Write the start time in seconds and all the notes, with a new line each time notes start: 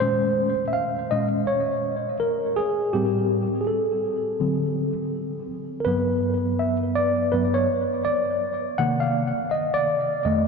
0.00 A#2 G#3 C#4 C5
0.68 E5
0.73 F5
1.11 A#2 G#3 C#4 D#5
1.47 C#5
2.20 A#4
2.56 G#4
2.93 A2 G3 C4 G4
3.61 G#4
3.67 A4
4.40 D3 F#3 C4
5.80 A#4
5.85 G2 F#3 B3 B4
6.59 E5
6.95 D5
7.32 G2 F#3 B3 B4
7.54 C#5
8.05 D5
8.78 C3 D#3 A#3 F#5
9.00 F5
9.51 D#5
9.74 D5
10.25 F2 D#3 A3 D#5